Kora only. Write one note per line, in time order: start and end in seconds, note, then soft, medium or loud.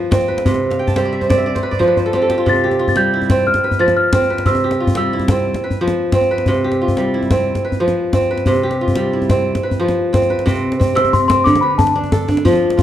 0.00 0.51 F3 medium
0.00 0.30 F4 medium
0.00 0.17 B4 medium
0.00 0.34 C5 medium
0.11 1.29 C4 medium
0.28 1.02 B4 medium
0.46 1.51 C3 medium
0.71 1.19 F5 medium
0.79 1.72 G5 medium
0.87 1.74 A5 medium
0.96 1.51 G3 medium
0.96 1.21 C5 medium
1.05 1.29 D5 medium
1.13 1.37 E5 medium
1.21 1.55 C5 medium
1.29 1.69 C4 medium
1.29 1.46 D5 medium
1.38 1.85 E5 medium
1.46 1.71 D5 medium
1.55 1.79 C5 medium
1.63 1.85 B4 medium
1.71 2.82 D5 medium
1.79 2.51 F3 medium
1.79 1.97 C5 medium
1.88 2.20 B4 medium
1.97 3.16 C5 medium
2.06 2.21 A4 medium
2.13 3.30 C4 medium
2.13 2.30 G4 medium
2.22 3.54 A4 medium
2.30 2.63 G4 medium
2.38 2.79 F4 medium
2.46 3.51 C3 medium
2.64 4.05 G4 medium
2.79 4.31 F4 medium
2.96 3.51 G3 medium
3.14 3.85 E4 medium
3.30 3.70 C4 medium
3.64 4.19 B4 medium
3.79 4.52 F3 medium
3.79 4.36 C5 medium
4.13 5.30 C4 medium
4.30 5.37 B4 medium
4.46 5.52 C3 medium
4.64 6.05 G4 medium
4.80 6.32 F4 medium
4.97 5.52 G3 medium
5.13 5.87 E4 medium
5.31 5.70 C4 medium
5.64 6.20 B4 medium
5.81 6.52 F3 medium
5.81 6.37 C5 medium
6.14 7.31 C4 medium
6.31 7.37 B4 medium
6.48 7.52 C3 medium
6.64 8.06 G4 medium
6.81 8.33 F4 medium
6.98 7.52 G3 medium
7.14 7.86 E4 medium
7.31 7.71 C4 medium
7.65 8.20 B4 medium
7.80 8.52 F3 medium
7.80 8.37 C5 medium
8.14 9.29 C4 medium
8.31 9.35 B4 medium
8.47 9.52 C3 medium
8.63 10.05 G4 medium
8.81 10.33 F4 medium
8.96 9.52 G3 medium
9.13 9.86 E4 medium
9.29 9.69 C4 medium
9.63 10.19 B4 medium
9.80 10.51 F3 medium
9.80 10.36 C5 medium
10.13 10.46 C4 medium
10.30 10.86 B4 medium
10.46 10.94 C3 medium
10.46 10.79 C4 medium
10.80 11.29 C4 medium
10.95 11.51 C3 medium
11.29 11.68 C4 medium
11.46 12.50 D3 medium
11.62 12.83 B4 medium
11.96 12.28 D4 medium
12.12 12.83 A4 medium
12.28 12.83 D4 medium
12.45 12.83 F3 medium
12.45 12.77 F4 medium
12.77 12.83 F4 medium